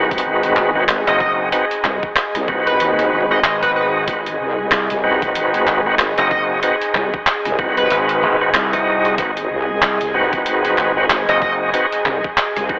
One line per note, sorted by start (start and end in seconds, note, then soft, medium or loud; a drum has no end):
0.00 0.23 C2 loud
0.00 0.71 C4 medium
0.00 0.71 D#4 medium
0.00 0.71 F#4 medium
0.00 12.79 G#4 medium
0.00 0.71 B4 medium
0.00 12.79 D#5 medium
0.00 12.79 G#5 medium
0.11 kick loud
0.11 closed hi-hat soft
0.18 closed hi-hat medium
0.25 0.54 G#1 loud
0.43 closed hi-hat medium
0.56 1.04 G#1 loud
0.56 clap medium
0.75 0.84 C4 medium
0.75 0.84 D#4 medium
0.75 0.84 F#4 medium
0.75 0.84 B4 loud
0.88 clap loud
0.88 closed hi-hat medium
1.07 1.50 F#1 medium
1.07 1.49 C4 medium
1.07 1.49 D#4 medium
1.07 1.49 F#4 medium
1.07 1.16 D#5 medium
1.07 1.49 D#5 medium
1.07 closed hi-hat soft
1.20 1.32 D#5 medium
1.20 kick loud
1.52 1.65 C4 medium
1.52 1.65 D#4 medium
1.52 1.65 F#4 medium
1.52 1.65 B4 medium
1.52 closed hi-hat medium
1.71 closed hi-hat medium
1.84 2.00 C2 loud
1.84 cross-stick soft
1.84 clap medium
2.03 kick loud
2.16 clap loud
2.16 closed hi-hat medium
2.35 2.78 C2 loud
2.35 cross-stick soft
2.35 closed hi-hat medium
2.48 3.26 C4 medium
2.48 3.26 D#4 medium
2.48 3.26 F#4 medium
2.48 3.26 B4 medium
2.48 kick loud
2.67 2.87 B4 loud
2.67 closed hi-hat soft
2.80 3.10 D#2 loud
2.80 closed hi-hat medium
2.99 closed hi-hat medium
3.12 3.42 G#1 loud
3.31 3.40 C4 medium
3.31 3.40 D#4 medium
3.31 3.40 F#4 medium
3.31 3.40 B4 medium
3.31 3.39 D#5 medium
3.44 4.06 G#1 medium
3.44 3.56 D#5 medium
3.44 clap loud
3.44 closed hi-hat medium
3.62 4.05 C4 medium
3.62 4.05 D#4 medium
3.62 4.05 F#4 medium
3.62 3.71 B4 medium
3.62 4.05 D#5 medium
3.62 kick medium
3.62 closed hi-hat medium
3.76 3.88 B4 medium
4.08 4.38 G#1 loud
4.08 4.21 C4 medium
4.08 4.21 D#4 medium
4.08 4.21 F#4 medium
4.08 4.21 B4 medium
4.08 kick loud
4.08 closed hi-hat medium
4.26 closed hi-hat medium
4.40 4.70 C2 loud
4.71 4.87 C2 loud
4.71 clap loud
4.71 closed hi-hat medium
4.90 5.33 C2 medium
4.90 closed hi-hat medium
5.04 5.82 C4 medium
5.04 5.82 D#4 medium
5.04 5.82 F#4 medium
5.04 5.82 B4 medium
5.22 kick loud
5.22 closed hi-hat soft
5.35 5.65 G#1 loud
5.35 closed hi-hat medium
5.54 closed hi-hat medium
5.67 6.15 G#1 loud
5.67 clap medium
5.86 5.95 C4 medium
5.86 5.95 D#4 medium
5.86 5.95 F#4 medium
5.86 5.95 B4 loud
5.99 clap loud
5.99 closed hi-hat medium
6.18 6.61 F#1 loud
6.18 6.60 C4 medium
6.18 6.60 D#4 medium
6.18 6.60 F#4 medium
6.18 6.60 D#5 medium
6.18 6.26 D#5 medium
6.18 closed hi-hat medium
6.31 6.43 D#5 medium
6.31 kick loud
6.63 6.76 C4 medium
6.63 6.76 D#4 medium
6.63 6.76 F#4 medium
6.63 6.76 B4 medium
6.63 closed hi-hat medium
6.81 closed hi-hat medium
6.95 7.11 C2 loud
6.95 cross-stick soft
6.95 clap medium
7.14 kick loud
7.27 clap loud
7.27 closed hi-hat medium
7.45 7.88 C2 loud
7.45 cross-stick soft
7.45 closed hi-hat medium
7.59 8.37 C4 medium
7.59 8.37 D#4 medium
7.59 8.37 F#4 medium
7.59 8.37 B4 medium
7.59 kick loud
7.77 7.98 B4 medium
7.77 closed hi-hat soft
7.90 8.21 G#1 medium
7.90 closed hi-hat medium
8.09 closed hi-hat soft
8.23 8.52 G#1 medium
8.41 8.50 C4 medium
8.41 8.50 D#4 medium
8.41 8.50 F#4 medium
8.41 8.50 B4 loud
8.54 9.16 C2 loud
8.54 clap loud
8.54 closed hi-hat medium
8.73 9.15 C4 medium
8.73 9.15 D#4 medium
8.73 9.15 F#4 medium
8.73 9.15 D#5 medium
8.73 kick medium
8.73 closed hi-hat soft
9.05 closed hi-hat soft
9.18 9.48 G#1 medium
9.18 9.31 C4 medium
9.18 9.31 D#4 medium
9.18 9.31 F#4 medium
9.18 9.31 B4 loud
9.18 kick loud
9.18 closed hi-hat medium
9.37 closed hi-hat soft
9.50 9.80 C2 loud
9.82 9.98 C2 medium
9.82 clap loud
9.82 closed hi-hat medium
10.01 10.44 C2 medium
10.01 closed hi-hat medium
10.14 10.92 C4 medium
10.14 10.92 D#4 medium
10.14 10.92 F#4 medium
10.14 10.92 B4 medium
10.33 kick loud
10.33 closed hi-hat soft
10.46 10.76 G#1 loud
10.46 closed hi-hat medium
10.65 closed hi-hat medium
10.78 11.26 G#1 loud
10.78 clap medium
10.97 11.06 C4 medium
10.97 11.06 D#4 medium
10.97 11.06 F#4 medium
10.97 11.06 B4 loud
11.10 clap loud
11.10 closed hi-hat medium
11.29 11.72 F#1 medium
11.29 11.71 C4 medium
11.29 11.71 D#4 medium
11.29 11.71 F#4 medium
11.29 11.37 D#5 medium
11.29 11.71 D#5 medium
11.29 closed hi-hat soft
11.42 11.54 D#5 medium
11.42 kick loud
11.73 11.86 C4 medium
11.73 11.87 D#4 medium
11.73 11.87 F#4 medium
11.73 11.87 B4 medium
11.73 closed hi-hat medium
11.92 closed hi-hat soft
12.06 12.21 C2 loud
12.06 cross-stick soft
12.06 clap medium
12.24 kick loud
12.37 clap loud
12.37 closed hi-hat medium
12.56 12.79 C2 medium
12.56 cross-stick soft
12.56 closed hi-hat medium
12.69 12.79 C4 medium
12.69 12.79 D#4 medium
12.69 12.79 F#4 medium
12.69 12.79 B4 medium
12.69 kick loud